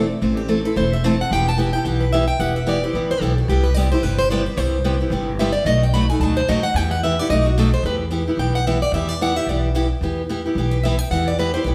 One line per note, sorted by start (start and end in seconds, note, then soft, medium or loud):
0.00 0.17 D5 medium
0.21 0.65 A1 medium
0.21 0.40 E3 medium
0.21 0.40 A3 medium
0.21 0.40 C4 medium
0.21 0.41 E4 medium
0.21 0.40 A4 medium
0.37 0.48 G4 medium
0.48 0.59 E3 medium
0.48 0.59 A3 medium
0.48 0.59 C4 medium
0.48 0.59 E4 medium
0.48 0.59 A4 medium
0.48 0.64 A4 medium
0.65 0.76 C4 soft
0.65 0.75 E4 medium
0.65 0.76 A4 soft
0.65 0.76 B4 loud
0.76 1.20 E1 medium
0.76 0.95 E3 medium
0.76 0.95 A3 medium
0.76 0.95 C4 medium
0.76 0.95 E4 medium
0.76 0.95 A4 medium
0.76 0.92 C5 medium
0.93 1.04 E5 loud
1.04 1.14 E3 loud
1.04 1.14 A3 loud
1.04 1.14 C4 loud
1.04 1.14 E4 loud
1.04 1.14 A4 loud
1.04 1.20 A5 loud
1.21 1.31 F#5 medium
1.31 1.74 E1 medium
1.31 1.50 E3 medium
1.31 1.50 B3 medium
1.31 1.50 E4 medium
1.31 1.50 G4 medium
1.31 1.47 G5 loud
1.49 1.59 A5 loud
1.58 1.68 E3 medium
1.58 1.68 B3 medium
1.58 1.68 E4 medium
1.58 1.69 G4 loud
1.58 1.73 G#5 medium
1.73 1.84 B3 medium
1.73 1.85 E4 medium
1.73 1.85 G4 medium
1.73 1.84 G5 loud
1.85 2.28 B1 medium
1.85 2.04 E3 medium
1.85 2.04 B3 medium
1.85 2.04 E4 medium
1.85 2.04 G4 medium
1.85 2.01 F#5 medium
2.01 2.12 B4 medium
2.13 2.23 E3 loud
2.13 2.23 B3 loud
2.13 2.23 E4 loud
2.13 2.24 G4 loud
2.13 2.27 E5 medium
2.28 2.40 G5 loud
2.39 2.83 E1 medium
2.39 2.58 E3 medium
2.39 2.58 B3 medium
2.39 2.58 E4 medium
2.39 2.59 G4 medium
2.39 2.55 F#5 medium
2.56 2.67 E5 medium
2.66 2.77 E3 medium
2.66 2.77 B3 medium
2.66 2.77 E4 medium
2.66 2.78 G4 medium
2.66 2.83 D5 medium
2.84 2.94 B3 soft
2.84 2.94 E4 medium
2.84 2.94 G4 medium
2.84 2.95 C5 medium
2.93 3.17 A1 medium
2.93 3.13 E3 medium
2.93 3.13 B3 medium
2.93 3.13 E4 medium
2.93 3.14 G4 medium
2.93 3.10 B4 medium
3.11 3.21 C5 loud
3.20 3.44 B1 medium
3.20 3.32 E3 medium
3.20 3.32 B3 medium
3.20 3.32 E4 loud
3.20 3.33 G4 loud
3.20 3.37 A4 medium
3.38 3.49 F#4 medium
3.48 3.92 C2 loud
3.48 3.68 C3 medium
3.48 3.68 G3 medium
3.48 3.68 B3 medium
3.48 3.68 E4 medium
3.48 3.64 G4 medium
3.48 3.68 G4 medium
3.64 3.74 B4 medium
3.74 3.87 C3 medium
3.74 3.87 G3 medium
3.74 3.87 B3 medium
3.74 3.87 E4 medium
3.74 3.87 G4 medium
3.74 3.91 D5 medium
3.92 4.03 B3 medium
3.92 4.04 E4 medium
3.92 4.03 G4 medium
3.92 4.03 C5 loud
4.03 4.46 G1 medium
4.03 4.22 C3 medium
4.03 4.22 G3 medium
4.03 4.22 B3 medium
4.03 4.23 E4 medium
4.03 4.22 G4 medium
4.03 4.18 B4 medium
4.19 4.30 C5 loud
4.30 4.41 C3 loud
4.30 4.41 G3 loud
4.30 4.41 B3 loud
4.30 4.42 E4 loud
4.30 4.42 G4 loud
4.30 4.46 D5 medium
4.46 4.58 B4 medium
4.57 5.01 C2 loud
4.57 4.76 C3 medium
4.57 4.76 G3 medium
4.57 4.76 B3 medium
4.57 4.76 E4 medium
4.57 4.77 G4 medium
4.57 5.12 C5 medium
4.84 4.95 C3 medium
4.84 4.95 G3 medium
4.84 4.95 B3 medium
4.84 4.95 E4 medium
4.84 4.95 G4 medium
5.01 5.11 B3 medium
5.01 5.11 E4 soft
5.01 5.11 G4 medium
5.10 5.54 G1 medium
5.10 5.30 C3 medium
5.10 5.31 G3 medium
5.10 5.31 B3 medium
5.10 5.31 E4 medium
5.10 5.31 G4 medium
5.39 5.50 C3 medium
5.39 5.50 G3 loud
5.39 5.50 B3 loud
5.39 5.50 E4 loud
5.39 5.50 G4 loud
5.39 5.52 E5 medium
5.52 5.65 D5 medium
5.65 6.09 B1 medium
5.65 5.85 B2 medium
5.65 5.85 F#3 medium
5.65 5.85 A3 medium
5.65 5.85 D#4 medium
5.65 5.85 F#4 medium
5.65 5.82 D#5 medium
5.83 5.93 G5 loud
5.94 6.04 B2 medium
5.94 6.05 F#3 medium
5.94 6.05 A3 medium
5.94 6.05 D#4 medium
5.94 6.05 F#4 loud
5.94 6.09 B5 loud
6.10 6.22 A3 medium
6.10 6.21 D#4 soft
6.10 6.21 F#4 medium
6.10 6.20 G#5 loud
6.19 6.43 D2 medium
6.19 6.40 B2 medium
6.19 6.41 F#3 medium
6.19 6.41 A3 medium
6.19 6.41 D#4 medium
6.19 6.36 A5 medium
6.23 6.41 F#4 medium
6.37 6.48 C5 medium
6.48 6.72 D#2 medium
6.48 6.59 B2 medium
6.48 6.59 F#3 loud
6.48 6.59 A3 loud
6.48 6.59 D#4 loud
6.48 6.59 F#4 loud
6.48 6.64 D#5 medium
6.63 6.76 F#5 loud
6.74 7.18 E2 loud
6.74 6.95 E3 medium
6.74 6.95 B3 medium
6.74 6.95 E4 medium
6.74 6.95 G4 medium
6.74 6.91 G5 loud
6.91 7.02 F#5 medium
7.04 7.14 E3 medium
7.04 7.14 B3 medium
7.04 7.14 E4 medium
7.04 7.14 G4 loud
7.04 7.19 E5 medium
7.19 7.31 B3 medium
7.19 7.31 E4 medium
7.19 7.30 G4 medium
7.19 7.30 D5 loud
7.29 7.73 B1 loud
7.29 7.49 B2 medium
7.29 7.49 F#3 medium
7.29 7.50 A3 medium
7.29 7.50 D#4 medium
7.29 7.50 F#4 medium
7.29 7.45 D#5 loud
7.46 7.57 F#4 medium
7.58 7.68 B2 loud
7.58 7.68 F#3 loud
7.58 7.68 A3 loud
7.58 7.68 D#4 loud
7.58 7.68 F#4 loud
7.58 7.73 A4 medium
7.74 7.84 C5 loud
7.83 8.27 E2 loud
7.83 8.04 E3 medium
7.83 8.04 B3 medium
7.83 8.04 E4 medium
7.83 8.04 G4 medium
7.83 7.95 B4 medium
8.11 8.22 E3 medium
8.11 8.22 B3 medium
8.11 8.22 E4 medium
8.11 8.22 G4 medium
8.28 8.38 B3 soft
8.28 8.39 E4 medium
8.28 8.38 G4 medium
8.37 8.81 B1 medium
8.37 8.58 E3 medium
8.37 8.58 B3 medium
8.37 8.58 E4 medium
8.37 8.58 G4 medium
8.37 8.54 G5 medium
8.55 8.66 F#5 medium
8.67 8.77 E3 loud
8.67 8.77 B3 loud
8.67 8.77 E4 loud
8.67 8.77 G4 loud
8.67 8.82 E5 medium
8.82 8.93 D5 loud
8.92 9.36 E2 medium
8.92 9.12 E3 medium
8.92 9.13 B3 medium
8.92 9.13 E4 medium
8.92 9.13 G4 medium
8.92 9.09 E5 loud
9.09 9.20 D5 loud
9.21 9.31 E3 medium
9.21 9.31 B3 loud
9.21 9.32 E4 loud
9.21 9.32 G4 medium
9.21 9.36 F#5 loud
9.36 9.48 B3 soft
9.36 9.48 E4 soft
9.36 9.48 G4 medium
9.36 9.48 E5 medium
9.47 9.91 B1 medium
9.47 9.67 E3 medium
9.47 9.67 B3 medium
9.47 9.68 E4 medium
9.47 9.68 G4 medium
9.47 9.58 D5 medium
9.75 9.85 E3 medium
9.75 9.86 B3 loud
9.75 9.86 E4 loud
9.75 9.86 G4 loud
10.01 10.45 E2 medium
10.01 10.21 E3 medium
10.01 10.22 B3 medium
10.01 10.21 E4 medium
10.01 10.21 G4 medium
10.29 10.40 E3 medium
10.29 10.40 B3 medium
10.29 10.40 E4 medium
10.29 10.40 G4 medium
10.46 10.57 B3 soft
10.46 10.57 E4 medium
10.46 10.57 G4 medium
10.55 10.99 B1 medium
10.55 10.76 E3 medium
10.55 10.76 B3 medium
10.55 10.76 E4 medium
10.55 10.76 G4 medium
10.71 10.83 B4 medium
10.84 10.95 E3 loud
10.84 10.95 B3 loud
10.84 10.95 E4 loud
10.84 10.95 G4 loud
10.84 10.99 E5 medium
10.99 11.10 G5 loud
11.10 11.54 E2 loud
11.10 11.30 E3 medium
11.10 11.31 B3 medium
11.10 11.31 E4 medium
11.10 11.31 G4 medium
11.10 11.27 F#5 medium
11.28 11.39 D5 loud
11.39 11.49 E3 medium
11.39 11.49 B3 medium
11.39 11.49 E4 medium
11.39 11.50 G4 medium
11.39 11.53 B4 medium
11.54 11.65 B3 medium
11.54 11.66 E4 soft
11.54 11.65 G4 medium
11.54 11.64 C5 loud
11.64 11.75 B1 medium
11.64 11.75 E3 medium
11.64 11.75 B3 medium
11.64 11.75 E4 medium
11.64 11.75 G4 medium
11.64 11.75 B4 medium